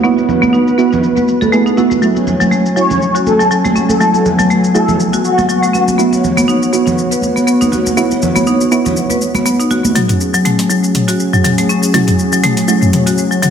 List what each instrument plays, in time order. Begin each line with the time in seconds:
Already playing: analog synth pad B3 F#4
0.03 marimba B3, synth stab B3 E4 F#4, analog synth pad B4, shaker
0.18 muted conga, shaker
0.29 low conga, shaker
0.42 marimba B3, high conga, shaker
0.53 marimba D#4, muted conga, shaker
0.68 shaker
0.78 marimba B3, synth stab B3 E4 F#4, shaker
0.92 muted conga, low conga, shaker
1.03 shaker
1.16 marimba B4, high conga, shaker
1.28 shaker
1.41 marimba A4, muted conga, high conga, shaker
1.52 marimba A3, synth stab B3 E4 G#4, shaker
1.66 marimba D#4, shaker
1.77 synth stab B3 E4 F#4, marimba E4, muted conga, shaker
1.91 high conga, shaker
2.02 marimba F#3, analog synth pad F#3 C#4 G#5, synth stab A3 E4 F#4, shaker
2.16 muted conga, shaker
2.27 low conga, shaker
2.40 marimba F#3, high conga, shaker
2.52 marimba A3, muted conga, shaker
2.66 shaker
2.76 marimba F#3, synth stab A3 E4 F#4, analog synth lead C#5, shaker
2.90 muted conga, low conga, shaker
3.02 shaker
3.15 marimba F#4, shaker
3.27 analog synth lead A4, high conga, shaker
3.40 marimba F#3, muted conga, shaker
3.51 marimba F#3, shaker
3.65 marimba A3, high conga, shaker
3.76 marimba C#4, muted conga, high conga, shaker
3.89 analog synth lead A4, high conga, shaker
4.00 marimba F#3, synth stab A3 E4 F#4, analog synth pad B3, shaker
4.14 muted conga, shaker
4.25 low conga, shaker
4.39 marimba F#3, high conga, shaker
4.50 marimba A3, muted conga, shaker
4.64 shaker
4.74 marimba F#3, synth stab A3 E4 F#4, analog synth lead A4, shaker
4.88 muted conga, low conga, shaker
5.00 shaker
5.13 marimba F#4, high conga, shaker
5.24 analog synth lead F#4, shaker
5.38 marimba F#3, muted conga, high conga, shaker
5.49 marimba F#3, analog synth lead F#4, shaker
5.62 marimba A3, shaker
5.73 marimba C#4, muted conga, shaker
5.88 high conga, shaker
5.98 marimba B3, synth stab B3 E4 F#4, analog synth pad F#4 C#5, shaker
6.13 muted conga, shaker
6.24 low conga, shaker
6.37 marimba B3, high conga, shaker
6.48 marimba D#4, muted conga, shaker
6.62 shaker
6.73 marimba B3, synth stab B3 E4 F#4, shaker
6.86 muted conga, low conga, shaker
6.98 shaker
7.11 marimba B4, shaker
7.22 high conga, shaker
7.36 marimba B3, muted conga, shaker
7.47 marimba B3, shaker
7.61 marimba D#4, high conga, shaker
7.72 marimba F#4, muted conga, high conga, shaker
7.86 high conga, shaker
7.97 synth stab B3 E4 F#4, marimba B3, shaker
8.11 muted conga, shaker
8.22 low conga, shaker
8.36 marimba B3, high conga, shaker
8.47 marimba D#4, muted conga, shaker
8.61 shaker
8.71 synth stab B3 E4 F#4, marimba B3, shaker
8.86 muted conga, low conga, shaker
8.97 shaker
9.10 marimba B4, high conga, shaker
9.21 shaker
9.35 marimba B3, muted conga, high conga, shaker
9.46 marimba B3, shaker
9.60 marimba D#4, shaker
9.71 marimba F#4, muted conga, shaker
9.85 high conga, shaker
9.95 marimba F#3, analog synth pad F#3 C#4 G#4, synth stab A3 E4 F#4, closed hi-hat, mid tom, shaker
10.09 closed hi-hat, mid tom, shaker
10.21 shaker
10.34 marimba F#3, shaker
10.45 marimba A3, closed hi-hat, mid tom, shaker
10.59 closed hi-hat, shaker
10.70 marimba F#3, synth stab A3 E4 F#4, shaker
10.84 shaker
10.95 closed hi-hat, mid tom, shaker
11.08 marimba F#4, closed hi-hat, shaker
11.20 shaker
11.33 marimba F#3, mid tom, shaker
11.44 marimba F#3, closed hi-hat, mid tom, shaker
11.58 marimba A3, closed hi-hat, shaker
11.69 marimba C#4, shaker
11.83 shaker
11.94 marimba F#3, synth stab A3 E4 F#4, closed hi-hat, mid tom, shaker
12.08 closed hi-hat, mid tom, shaker
12.19 shaker
12.33 marimba F#3, shaker
12.44 marimba A3, closed hi-hat, mid tom, shaker
12.57 closed hi-hat, shaker
12.68 marimba F#3, synth stab A3 E4 F#4, shaker
12.82 mid tom, shaker
12.93 closed hi-hat, mid tom, shaker
13.07 marimba F#4, closed hi-hat, shaker
13.18 shaker
13.31 marimba F#3, shaker
13.42 marimba F#3, closed hi-hat, mid tom, shaker